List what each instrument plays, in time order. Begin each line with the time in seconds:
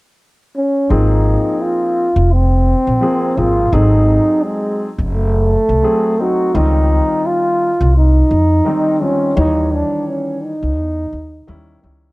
0.56 trombone C#4
0.89 upright bass G#1, grand piano F3 A#3 C4 G#4, trombone D#4
1.62 trombone F4
2.16 upright bass F1
2.33 trombone C4
2.87 upright bass A#1
3.01 grand piano F3 A#3 C4 G#4
3.37 upright bass G#1, grand piano F3 A#3 C4 G#4, trombone F4
3.72 upright bass G#1, grand piano F#3 C4 G#4 A4, trombone D#4
4.43 trombone G#3
4.98 upright bass F#1
5.14 trombone A3
5.69 upright bass C2
5.82 grand piano F#3 A3 C4 G#4
6.19 grand piano F#3 A3 C4 D#4, trombone F#4
6.54 upright bass C#2, grand piano D#3 G3 C4 F4, trombone D#4
7.26 trombone F4
7.81 upright bass C2
7.97 trombone D#4
8.31 upright bass F2
8.65 grand piano D#3 G3 C4 D#4
9.00 grand piano D#3 G3 C4 F4, trombone C#4
9.35 upright bass D#2, grand piano D#3 E3 G3 C#5, trombone D#4
9.73 trombone D4
10.09 trombone C#4
10.45 trombone D#4
10.63 upright bass C#2
10.78 upright bass E2
11.13 upright bass D#2
11.47 upright bass D#2, grand piano D#3 G3 C#4 E4
11.82 upright bass C#2, grand piano D#3 G3 C#4 E4